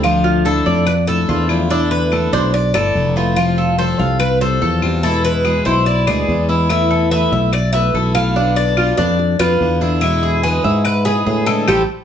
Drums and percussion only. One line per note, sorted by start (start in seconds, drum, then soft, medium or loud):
0.03 claves medium
0.87 claves medium
1.49 claves medium
2.12 claves medium
2.74 claves medium
3.37 claves medium
4.20 claves medium
4.82 claves medium
5.45 claves medium
6.07 claves medium
6.69 claves medium
7.53 claves medium
8.15 claves medium
8.77 claves medium
9.40 claves medium
10.02 claves medium
10.85 claves medium
11.47 claves medium
11.68 claves medium